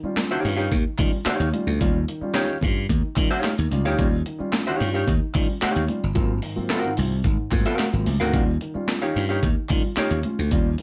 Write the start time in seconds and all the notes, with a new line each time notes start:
0.03 G3 C#4 F4, muted slap bass stroke
0.17 C#4 F4, snare, clap, closed hi-hat, high conga
0.31 D#3 D#4 G4 C#5 F5
0.44 G2 C#4 F4, open hi-hat, muted conga
0.57 D#4 G4 C#5 F5
0.71 D#2 D#3, kick, closed hi-hat, muted conga
0.98 D#3 G3 C#4 F4, kick, clap, open hi-hat, muted conga, low conga
1.12 C#4 F4
1.25 C#4 D#4 F4 G4 C#5 F5, muted slap bass stroke, snare, clap, closed hi-hat, high conga
1.39 D#2 D#3, closed hi-hat
1.53 G3 C#4 F4, closed hi-hat, high conga
1.67 D2
1.80 D#2 G3 C#4 F4, kick, closed hi-hat, muted conga
2.08 D#3, closed hi-hat
2.21 G3 C#4 F4, muted slap bass stroke
2.34 C#4 D#4 G4 C#5 F5, snare, clap, closed hi-hat, high conga
2.49 D#3
2.61 G2 C#4 F4, kick, open hi-hat, muted conga, low conga
2.89 D#2 D#3, kick, closed hi-hat, muted conga
3.16 D#3 G3 C#4 F4, kick, clap, open hi-hat, muted conga
3.30 C#4 D#4 F4 G4 C#5 F5
3.44 C#4 F4, snare, clap, closed hi-hat, high conga
3.57 D#2 D#3, closed hi-hat
3.71 C#2 G3 C#4 F4, closed hi-hat, high conga
3.85 D2 D#4 G4 C#5 F5
3.98 D#2 G3 C#4 F4, kick, closed hi-hat, muted conga
4.26 D#3, closed hi-hat
4.39 G3 C#4 F4, muted slap bass stroke
4.53 C#4 F4, snare, clap, closed hi-hat, high conga
4.67 D#3 D#4 G4 C#5 F5
4.80 G2 C#4 F4, open hi-hat, muted conga
4.94 D#4 G4 C#5 F5
5.07 D#2 D#3, kick, closed hi-hat, muted conga
5.34 D#3 G3 C#4 F4, kick, clap, open hi-hat, muted conga, low conga
5.48 C#4 F4
5.62 D#4 G4 C#5 F5, muted slap bass stroke, snare, clap, closed hi-hat, high conga
5.75 D#2 D#3, closed hi-hat
5.88 G3 C#4 F4, closed hi-hat, high conga
6.04 G1
6.15 G#1 F#3 A#3 C4 F4, kick, closed hi-hat, muted conga
6.42 G#2 D#3, open hi-hat
6.56 F#3 A#3 C4 F4, muted slap bass stroke
6.69 C4 F4 F#4 A#4 F5, snare, clap, closed hi-hat, high conga
6.83 G#2 D#3
6.97 C2 C4 F4, open hi-hat, muted conga, low conga
7.24 G#1 G#2 D#3, kick, closed hi-hat, muted conga
7.51 G#2 F#3 A#3 C4 F4, kick, clap, open hi-hat, muted conga
7.65 C4 F4 F#4 A#4 F5, closed hi-hat
7.79 snare, clap, closed hi-hat, high conga
7.92 G#1 F#3 A#3 C4 F4
8.06 C#2, open hi-hat, high conga
8.20 D2 G#2 D#3 C4 F#4 A#4 F5
8.33 D#2 G3 C#4 F4, kick, closed hi-hat, muted conga
8.61 D#3, closed hi-hat
8.74 G3 C#4 F4, muted slap bass stroke
8.87 C#4 F4, snare, clap, closed hi-hat, high conga
9.01 D#3 D#4 G4 C#5 F5
9.14 G2 C#4 F4, open hi-hat, muted conga
9.29 D#4 G4 C#5 F5
9.42 D#2 D#3, kick, closed hi-hat, muted conga
9.69 D#3 G3 C#4 F4, kick, clap, open hi-hat, muted conga, low conga
9.83 C#4 F4
9.97 C#4 D#4 F4 G4 C#5 F5, muted slap bass stroke, snare, clap, closed hi-hat, high conga
10.10 D#2 D#3, closed hi-hat
10.23 C#4 F4, closed hi-hat, high conga
10.39 D2
10.51 D#2 G3 C#4 F4, kick, closed hi-hat, muted conga
10.78 D#3, closed hi-hat